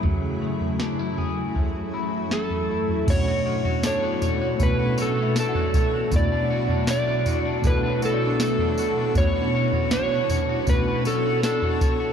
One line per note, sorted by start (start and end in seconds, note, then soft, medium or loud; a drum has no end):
0.00 3.04 F#2 medium
0.00 1.54 F#2 medium
0.00 1.55 C#3 medium
0.00 3.03 F#3 medium
0.00 3.54 F#3 medium
0.00 0.41 A3 medium
0.00 3.03 A3 medium
0.00 0.79 E4 medium
0.00 3.04 E4 medium
0.00 1.17 G#4 medium
0.00 kick loud
0.00 floor tom loud
0.05 1.53 E3 medium
0.05 1.56 A3 medium
0.05 1.58 C#4 medium
0.05 3.05 F#4 medium
0.10 1.59 G#4 medium
0.42 1.55 A3 medium
0.61 floor tom medium
0.79 0.99 D4 medium
0.79 snare medium
0.99 1.92 E4 soft
1.18 2.32 G#4 medium
1.18 floor tom medium
1.55 2.28 E3 medium
1.55 4.63 A3 medium
1.55 2.31 A3 medium
1.55 kick medium
1.55 floor tom medium
1.59 2.33 C#4 medium
1.59 2.34 G#4 medium
1.94 2.69 E4 soft
2.29 3.06 E3 medium
2.29 3.08 A3 medium
2.29 3.11 A4 medium
2.29 snare loud
2.33 3.09 C#4 medium
2.50 floor tom medium
2.70 3.16 E4 soft
2.89 floor tom soft
3.06 4.21 B2 medium
3.06 12.13 B2 medium
3.06 4.59 B2 medium
3.06 6.08 A3 medium
3.06 4.60 A3 medium
3.06 4.23 C#4 medium
3.06 4.26 D4 medium
3.06 12.13 E4 medium
3.06 12.13 F#4 medium
3.06 6.09 C#5 medium
3.06 kick loud
3.06 floor tom loud
3.06 crash loud
3.06 tambourine medium
3.10 4.20 F#4 medium
3.10 3.85 C#5 loud
3.27 3.65 F#4 medium
3.46 4.21 C#5 medium
3.65 4.02 F#4 medium
3.65 floor tom medium
3.83 5.36 D4 medium
3.83 5.14 A4 medium
3.83 4.63 C#5 medium
3.83 snare loud
3.83 tambourine loud
4.03 4.41 F#4 medium
4.21 4.61 C#4 soft
4.21 4.59 F#4 medium
4.21 4.97 C#5 medium
4.21 floor tom medium
4.21 tambourine medium
4.26 4.61 D4 soft
4.42 4.79 F#4 medium
4.57 6.09 B2 medium
4.57 6.12 B2 medium
4.57 6.11 A3 medium
4.57 kick loud
4.57 floor tom medium
4.57 tambourine medium
4.62 6.13 C#4 medium
4.62 6.12 D4 medium
4.62 6.14 F#4 medium
4.62 5.00 B4 loud
4.79 5.17 F#4 medium
4.98 6.28 B4 medium
4.98 5.74 C#5 medium
4.98 tambourine medium
5.02 5.35 A4 medium
5.17 5.55 F#4 medium
5.23 6.49 E5 soft
5.36 6.32 D4 medium
5.36 6.16 A4 loud
5.36 snare loud
5.36 tambourine medium
5.49 6.71 F#5 medium
5.55 5.93 F#4 medium
5.55 floor tom medium
5.74 6.20 C#5 medium
5.74 kick loud
5.74 tambourine medium
5.94 6.50 F#4 medium
6.10 7.25 B2 medium
6.10 7.63 B2 medium
6.10 7.64 A3 medium
6.10 12.13 B3 medium
6.10 9.12 D4 medium
6.10 7.29 D4 medium
6.10 7.25 E4 medium
6.10 7.23 F#4 medium
6.10 9.12 A4 medium
6.10 kick loud
6.10 floor tom loud
6.10 tambourine medium
6.16 6.89 D5 loud
6.32 6.70 D4 medium
6.50 7.26 F#4 medium
6.69 7.07 D4 medium
6.69 floor tom medium
6.87 8.41 A3 medium
6.87 7.67 D5 loud
6.87 snare loud
6.87 tambourine medium
7.08 7.45 D4 medium
7.23 7.64 E4 soft
7.23 7.62 F#4 medium
7.23 8.02 F#4 medium
7.23 floor tom medium
7.23 tambourine medium
7.29 7.65 D4 soft
7.45 7.83 D4 medium
7.61 9.13 B2 medium
7.61 9.15 B2 medium
7.61 9.15 A3 medium
7.61 kick loud
7.61 floor tom medium
7.61 tambourine medium
7.65 9.16 D4 medium
7.65 9.17 E4 medium
7.65 8.94 A4 medium
7.65 8.01 B4 loud
7.70 9.17 F#4 medium
7.83 8.22 D4 medium
7.89 9.15 C#5 medium
8.02 8.79 F#4 medium
8.02 8.39 A4 medium
8.02 9.32 B4 medium
8.02 tambourine medium
8.14 9.37 D5 medium
8.22 8.60 D4 medium
8.27 9.53 D4 medium
8.40 10.71 A3 medium
8.40 9.13 A4 medium
8.40 snare loud
8.40 tambourine medium
8.59 8.97 D4 medium
8.59 floor tom medium
8.78 9.35 F#4 medium
8.78 tambourine medium
8.98 9.58 D4 medium
9.14 10.29 B2 medium
9.14 10.67 B2 medium
9.14 10.67 A3 loud
9.14 10.29 C#4 medium
9.14 10.32 D4 medium
9.14 10.27 F#4 loud
9.14 12.13 C#5 medium
9.14 9.92 C#5 loud
9.14 kick loud
9.14 floor tom loud
9.14 tambourine medium
9.36 9.73 F#4 medium
9.55 10.29 C#5 medium
9.72 10.12 F#4 medium
9.72 floor tom medium
9.91 11.44 D4 medium
9.91 10.70 C#5 loud
9.91 snare loud
9.91 tambourine loud
10.12 10.49 F#4 medium
10.27 10.68 C#4 soft
10.27 10.66 F#4 medium
10.27 11.05 C#5 medium
10.27 floor tom medium
10.27 tambourine medium
10.33 10.67 D4 soft
10.49 10.87 F#4 medium
10.66 11.05 B2 medium
10.66 12.13 B2 medium
10.66 11.05 A3 medium
10.66 11.05 C#4 medium
10.66 11.06 D4 medium
10.66 11.07 B4 loud
10.66 kick loud
10.66 floor tom medium
10.66 tambourine medium
10.70 11.01 F#4 medium
10.88 11.25 F#4 medium
11.03 12.13 C#4 soft
11.03 12.13 F#4 soft
11.03 11.81 C#5 medium
11.03 tambourine medium
11.07 12.13 D4 soft
11.07 11.43 A4 medium
11.26 11.62 F#4 medium
11.43 12.13 D4 medium
11.43 12.13 A4 medium
11.43 snare loud
11.43 tambourine medium
11.62 11.99 F#4 medium
11.62 floor tom medium
11.81 12.13 C#5 medium
11.81 kick medium
11.81 tambourine medium
12.00 12.13 F#4 medium